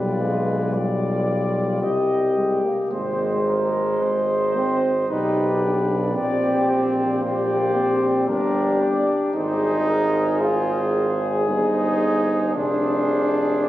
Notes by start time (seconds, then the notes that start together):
Already playing: B1 G3 F4 B4 D5
0.21 G#3
0.73 G3 F4 D5
1.81 C2 G4 D#5
2.37 G#3
2.64 A#3
2.90 G#1 G#3 C5 D#5
3.47 A#4
4.01 G#1 C5
4.56 C4
5.10 B1 D#4 G4 B4 D5
5.63 D4
6.15 A#1 C4 G4 D5
6.71 C5
7.23 A#3 G4 D5
7.75 C4
8.28 G1 D4 G4 A#4 D5
8.83 D5
9.34 G#1 D#4 G#4 C5
9.89 A#4
10.41 F4 G#4
11.48 G1 D#4 G#4 C5
12.54 F1 D4 G#4 C5
13.63 D5